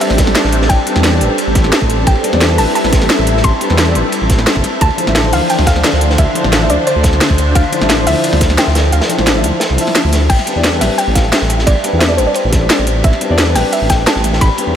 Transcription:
Already playing: G3 C4 D4 A4 B4
0.01 E5, closed hi-hat, ride
0.10 A1, snare
0.18 kick, snare, closed hi-hat, ride
0.27 snare
0.35 snare, closed hi-hat, ride
0.44 A1, snare
0.53 closed hi-hat, ride
0.61 snare
0.69 A1 G5, kick, closed hi-hat, ride
0.86 G3 C4 D4 B4, closed hi-hat, ride
0.94 E2 G3 C4 D4 B4, snare
1.04 snare, closed hi-hat, ride
1.12 G3 C4 D4 D5
1.20 A1 G3 C4 D4 B4, closed hi-hat, ride
1.38 closed hi-hat, ride
1.47 A1
1.55 kick, snare, closed hi-hat, ride
1.64 snare
1.72 snare, closed hi-hat, ride
1.81 A1, kick
1.90 closed hi-hat, ride
2.07 A1 E4 G5, kick, closed hi-hat, ride
2.15 ride
2.23 G3 C4 D4 B4, closed hi-hat, ride
2.32 E2 G3 C4 D4 D5, snare
2.41 snare, closed hi-hat, ride
2.49 G3 C4 D4 B4
2.56 A1 G3 C4 D4 A5, closed hi-hat, open hi-hat
2.61 B4
2.68 ride
2.75 A5, closed hi-hat, ride
2.84 A1, snare
2.93 kick, snare, closed hi-hat, ride
3.02 snare
3.10 snare, closed hi-hat, ride
3.19 A1, snare
3.27 closed hi-hat, ride
3.37 snare
3.44 A1 C6, kick, closed hi-hat, ride
3.60 G3 C4 D4 B4, closed hi-hat, ride
3.69 E2 G3 C4 D4 B4, snare
3.78 snare, closed hi-hat, ride
3.86 G3 C4 D4 D5
3.94 A1 G3 C4 D4 B4, closed hi-hat, ride
4.12 closed hi-hat, ride
4.21 A1
4.30 kick, snare, closed hi-hat, ride
4.39 snare
4.47 snare, closed hi-hat, ride
4.56 G1, kick
4.64 snare, closed hi-hat, ride
4.81 D2 D3 D4 C5 A5, kick, closed hi-hat, ride
4.90 ride
4.97 F3 D4 E4 C5, closed hi-hat, ride
5.06 A1 F3 D4 E4 E5, snare
5.15 snare, closed hi-hat, ride
5.23 F3 D4 E4 C5
5.30 D2 E3 F3 D4 F5, closed hi-hat, open hi-hat
5.35 C5
5.42 ride
5.50 G5, closed hi-hat, ride
5.59 D2, snare
5.66 F5, kick, snare, closed hi-hat, ride
5.76 snare
5.84 snare, closed hi-hat, ride
5.93 D2, snare
6.01 closed hi-hat, ride
6.10 snare
6.18 D2 E5, kick, closed hi-hat, ride
6.34 F3 D4 E4 C5, closed hi-hat, ride
6.43 A1 F3 D4 E4 C5, snare
6.53 snare, closed hi-hat, ride
6.60 F3 D4 E4 E5
6.69 D2 F3 D4 E4 C5 D5, closed hi-hat, ride
6.87 C5, closed hi-hat, ride
6.96 D2
7.03 kick, snare, closed hi-hat, ride
7.13 snare
7.21 snare, closed hi-hat, ride
7.30 D2, kick
7.38 closed hi-hat, ride
7.55 D2 F5, kick, closed hi-hat, ride
7.64 ride
7.71 F3 D4 E4 C5, closed hi-hat, ride
7.80 A1 F3 D4 E4 E5, snare
7.89 snare, closed hi-hat, ride
7.97 F3 D4 E4 C5
8.04 D2 F3 D4 E4 E5, closed hi-hat, open hi-hat
8.09 C5
8.15 ride
8.24 closed hi-hat, ride
8.33 D2, snare
8.41 kick, snare, closed hi-hat, ride
8.50 snare
8.58 G5, snare, closed hi-hat, ride
8.67 D2, snare
8.75 snare, closed hi-hat, ride
8.92 D2 F5, closed hi-hat, ride
9.01 snare, ride
9.08 F3 D4 E4 C5, closed hi-hat
9.17 A1 F3 D4 E4 C5, snare, ride
9.27 snare, closed hi-hat, ride
9.35 F3 D4 E4 E5
9.43 D2 F3 D4 E4 C5, closed hi-hat, ride
9.60 snare, closed hi-hat, ride
9.70 C2
9.76 F3 D4 E4, closed hi-hat, open hi-hat
9.81 E5
9.87 snare, ride
9.95 snare, closed hi-hat, ride
10.04 D2
10.13 snare, closed hi-hat, ride
10.29 A1 G5, kick, closed hi-hat, crash, ride
10.39 snare, ride
10.46 G3 C4 D4 B4, closed hi-hat, ride
10.55 E2 G3 C4 D4 D5
10.64 snare, closed hi-hat, ride
10.72 G3 C4 D4 B4
10.79 A1 G3 C4 D4 E5, snare, closed hi-hat, open hi-hat
10.84 B4
10.90 ride
10.98 G5, closed hi-hat, ride
11.07 A1
11.15 F5, kick, snare, closed hi-hat, ride
11.32 E5, snare, closed hi-hat, ride
11.41 A1, snare
11.50 snare, closed hi-hat, ride
11.59 snare
11.67 A1 D5, kick, closed hi-hat, ride
11.83 G3 C4 D4 B4, closed hi-hat, ride
11.92 E2 G3 C4 D4 B4
11.99 E5, snare, closed hi-hat, ride
12.08 G3 C4 D4 D5
12.17 A1 G3 C4 D4 B4 C5, closed hi-hat, ride
12.27 D5
12.34 C5, closed hi-hat, ride
12.44 A1
12.50 G3 C4 D4, kick, snare, closed hi-hat, ride
12.55 D5
12.70 snare, closed hi-hat, ride
12.79 A1
12.87 closed hi-hat, ride
13.04 A1 E5, kick, closed hi-hat, ride
13.13 snare, ride
13.20 G3 C4 D4 B4, closed hi-hat, ride
13.29 E2 G3 C4 D4 D5
13.38 snare, closed hi-hat, ride
13.46 G3 C4 D4 B4
13.53 A1 G3 C4 D4 G5, snare, closed hi-hat, open hi-hat
13.58 B4
13.65 ride
13.73 E5, closed hi-hat, ride
13.82 A1
13.89 G5, kick, snare, closed hi-hat, ride
14.07 A5, snare, closed hi-hat, ride
14.16 A1, snare
14.24 snare, closed hi-hat, ride
14.33 snare
14.41 A1 B5, kick, closed hi-hat, ride
14.57 G3 C4 D4 B4, closed hi-hat, ride
14.66 E2 G3 C4 D4 B4

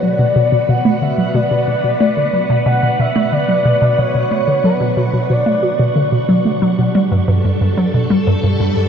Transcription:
Already playing: B3 D4 F#4 B4 F#5 C#6
0.03 F#3 D5
0.19 B2
0.36 B2
0.52 B2
0.69 B2 F#5
0.85 A3
1.02 D3 E5
1.18 F#3
1.34 B2 D5
1.51 B2
1.68 B2
1.84 B2
2.00 A3
2.17 D3
2.33 F#3
2.50 B2
2.66 B2 F#5
2.83 B2
2.99 B2 E5
3.16 A3
3.32 D3 D5
3.48 F#3
3.65 B2
3.82 B2
3.98 B2 C#5
4.15 B2
4.31 A3
4.48 D3
4.64 F#3 B4
4.81 B2
4.97 B2
5.13 B2
5.30 B2 D5
5.46 A3
5.63 F#4
5.79 B2
5.96 D3
6.12 B2
6.29 F#3
6.45 A3
6.62 F#3 G3
6.79 B2
6.95 G3
7.12 G2
7.25 G2 A4
7.39 D4
7.45 G2
7.61 G2
7.77 F#3
7.94 B2
8.10 G3
8.27 G2
8.43 G2 B4
8.60 G2
8.77 G2

